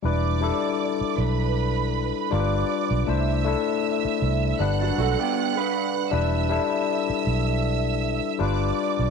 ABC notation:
X:1
M:4/4
L:1/16
Q:"Swing 16ths" 1/4=79
K:Em
V:1 name="String section"
[dd']6 [Bb]6 [dd']4 | [ee']8 [ff']8 | [ee']12 [dd']4 |]
V:2 name="Tine electric piano"
[G,DEB]2 [G,DEA]6 z4 [G,D=F_B=B]4 | [A,DEc]2 [A,DEA]6 [G,DBf]6 z2 | [G,DEB]2 [G,DEA]6 z4 [G,D=FB]4 |]
V:3 name="Clean electric guitar"
z16 | z8 z [F,D] [A,F] [B,G]2 [DB]3 | z16 |]
V:4 name="Fingered electric bass" clef=bass
E,,,3 z3 B,,,4- B,,, z G,,,2 z B,,, | C,,3 z3 C,,2 G,,,2 B,,, z4 z | E,,,3 z3 B,,,4- B,,, z G,,,2 z B,,, |]